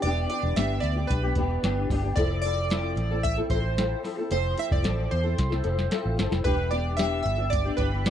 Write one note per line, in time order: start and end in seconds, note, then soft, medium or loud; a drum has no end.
0.02 0.25 E1 medium
0.02 0.28 E3 medium
0.02 0.29 B3 medium
0.02 0.30 D4 medium
0.02 0.30 G4 medium
0.02 0.28 D5 loud
0.02 closed hi-hat medium
0.29 0.55 E3 medium
0.29 0.56 B3 medium
0.29 0.56 D4 medium
0.29 0.57 G4 medium
0.29 0.57 D5 medium
0.29 closed hi-hat medium
0.43 0.54 E1 loud
0.56 0.78 G1 medium
0.56 0.96 E3 medium
0.56 0.97 B3 medium
0.56 0.96 D4 medium
0.56 0.95 G4 medium
0.56 0.84 E5 medium
0.56 snare loud
0.56 closed hi-hat medium
0.80 1.04 D2 medium
0.80 1.07 D5 medium
0.80 closed hi-hat medium
0.96 1.24 B3 soft
0.96 1.23 D4 soft
0.96 1.21 G4 soft
1.07 1.32 B1 medium
1.07 1.85 B4 medium
1.07 kick medium
1.07 closed hi-hat loud
1.23 1.35 B3 soft
1.23 1.36 D4 soft
1.23 1.36 G4 medium
1.35 1.58 E1 medium
1.35 1.62 E3 medium
1.35 1.62 B3 medium
1.35 1.63 D4 medium
1.35 1.63 G4 medium
1.35 kick medium
1.35 closed hi-hat medium
1.63 1.85 G1 medium
1.63 1.88 E3 medium
1.63 1.89 B3 medium
1.63 1.90 D4 medium
1.63 1.90 G4 medium
1.63 snare loud
1.63 closed hi-hat medium
1.89 2.11 G1 medium
1.89 2.03 E3 medium
1.89 2.04 B3 medium
1.89 2.03 D4 medium
1.89 2.02 G4 medium
1.89 kick medium
1.89 snare soft
1.89 open hi-hat medium
2.03 2.16 B3 soft
2.03 2.17 D4 soft
2.03 2.17 G4 soft
2.16 2.93 F1 loud
2.16 2.43 F3 medium
2.16 2.43 C4 medium
2.16 2.44 E4 medium
2.16 2.44 A4 medium
2.16 2.40 D5 medium
2.16 kick loud
2.16 closed hi-hat medium
2.42 2.69 F3 medium
2.42 2.70 C4 medium
2.42 2.70 E4 medium
2.42 2.71 A4 medium
2.42 3.26 D5 medium
2.42 closed hi-hat medium
2.70 3.11 F3 medium
2.70 3.11 C4 medium
2.70 3.11 E4 medium
2.70 3.10 A4 medium
2.70 snare loud
2.70 closed hi-hat medium
2.97 3.40 A1 medium
2.97 closed hi-hat medium
3.11 3.38 C4 soft
3.11 3.38 E4 soft
3.11 3.36 A4 medium
3.23 3.36 E5 loud
3.23 kick medium
3.23 closed hi-hat loud
3.37 3.50 C4 soft
3.37 3.51 E4 soft
3.37 3.51 A4 medium
3.50 3.93 A1 medium
3.50 3.76 F3 medium
3.50 3.76 C4 medium
3.50 3.77 E4 medium
3.50 3.78 A4 medium
3.50 4.01 C5 medium
3.50 kick medium
3.50 closed hi-hat medium
3.77 4.02 F3 medium
3.77 4.03 C4 medium
3.77 4.04 E4 medium
3.77 4.04 A4 medium
3.77 snare loud
3.77 closed hi-hat medium
4.03 4.17 F3 medium
4.03 4.18 C4 medium
4.03 4.18 E4 medium
4.03 4.16 A4 medium
4.03 snare soft
4.03 open hi-hat medium
4.18 4.30 C4 soft
4.18 4.30 E4 medium
4.18 4.31 A4 medium
4.31 4.53 F1 loud
4.31 4.55 F3 medium
4.31 4.56 C4 medium
4.31 4.57 E4 medium
4.31 4.57 A4 medium
4.31 4.56 C5 loud
4.31 closed hi-hat medium
4.56 4.81 F3 medium
4.56 4.81 C4 medium
4.56 4.82 E4 medium
4.56 4.82 A4 medium
4.56 4.65 E5 loud
4.56 closed hi-hat medium
4.71 4.82 F1 medium
4.71 5.13 D5 medium
4.71 kick medium
4.82 5.06 A1 medium
4.82 5.24 F3 medium
4.82 5.24 C4 medium
4.82 5.24 E4 medium
4.82 5.22 A4 medium
4.82 snare loud
4.82 closed hi-hat medium
5.11 5.33 E2 medium
5.11 6.14 C5 medium
5.11 closed hi-hat medium
5.24 5.51 C4 soft
5.24 5.50 E4 soft
5.24 5.48 A4 soft
5.38 5.60 C2 medium
5.38 kick medium
5.38 snare medium
5.38 closed hi-hat loud
5.50 5.62 C4 soft
5.50 5.63 E4 soft
5.50 5.63 A4 medium
5.50 snare soft
5.62 5.86 F1 loud
5.62 5.90 F3 medium
5.62 5.90 C4 medium
5.62 5.91 E4 medium
5.62 5.91 A4 medium
5.62 closed hi-hat medium
5.79 snare medium
5.91 6.15 F3 medium
5.91 6.16 C4 medium
5.91 6.17 E4 loud
5.91 6.18 A4 medium
5.91 snare medium
5.91 closed hi-hat medium
6.05 6.16 A1 medium
6.17 6.30 G1 medium
6.17 6.31 F3 medium
6.17 6.31 C4 medium
6.17 6.30 E4 medium
6.17 6.29 A4 medium
6.17 snare loud
6.17 closed hi-hat medium
6.30 6.43 F1 medium
6.30 6.44 C4 soft
6.30 6.45 E4 soft
6.30 6.44 A4 soft
6.30 snare medium
6.44 7.21 E1 medium
6.44 6.69 E3 medium
6.44 6.70 B3 medium
6.44 6.70 D4 medium
6.44 6.71 G4 medium
6.44 6.70 B4 medium
6.44 kick loud
6.44 closed hi-hat medium
6.70 6.96 E3 medium
6.70 6.97 B3 medium
6.70 6.97 D4 medium
6.70 6.98 G4 medium
6.70 6.96 D5 medium
6.70 closed hi-hat medium
6.97 7.38 E3 medium
6.97 7.39 B3 medium
6.97 7.38 D4 medium
6.97 7.36 G4 medium
6.97 7.21 E5 loud
6.97 snare loud
6.97 closed hi-hat medium
7.23 7.68 G1 medium
7.23 7.52 E5 medium
7.23 closed hi-hat medium
7.38 7.66 B3 soft
7.38 7.65 D4 soft
7.38 7.63 G4 medium
7.50 7.79 D5 loud
7.50 kick medium
7.50 closed hi-hat loud
7.64 7.78 B3 soft
7.64 7.78 D4 medium
7.64 7.78 G4 medium
7.77 8.10 G1 medium
7.77 8.03 E3 medium
7.77 8.04 B3 medium
7.77 8.05 D4 medium
7.77 8.05 G4 medium
7.77 8.10 B4 medium
7.77 kick medium
7.77 closed hi-hat medium
8.05 8.10 E3 medium
8.05 8.10 B3 medium
8.05 8.10 D4 medium
8.05 8.10 G4 medium
8.05 snare loud
8.05 closed hi-hat medium